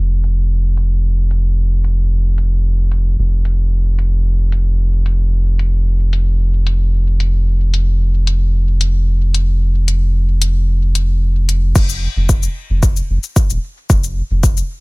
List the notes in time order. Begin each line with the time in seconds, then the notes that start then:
Already playing: F1
0.24 closed hi-hat
0.77 closed hi-hat
1.31 closed hi-hat
1.84 closed hi-hat
2.38 closed hi-hat
2.92 closed hi-hat
3.18 F1
3.45 closed hi-hat
3.99 closed hi-hat
4.52 closed hi-hat
5.06 closed hi-hat
5.59 closed hi-hat
6.13 closed hi-hat
6.67 closed hi-hat
7.20 closed hi-hat
7.74 closed hi-hat
8.27 closed hi-hat
8.81 closed hi-hat
9.34 closed hi-hat
9.88 closed hi-hat
10.42 closed hi-hat
10.95 closed hi-hat
11.49 closed hi-hat
11.76 F1, kick, crash, cabasa
11.89 cabasa
12.16 F1
12.29 kick, cabasa
12.43 cabasa
12.70 F1
12.83 kick, cabasa
12.96 cabasa
13.09 F1
13.23 cabasa
13.36 kick, cabasa
13.50 D#1, cabasa
13.90 F1, kick, cabasa
14.04 cabasa
14.30 F1
14.43 kick, cabasa
14.57 cabasa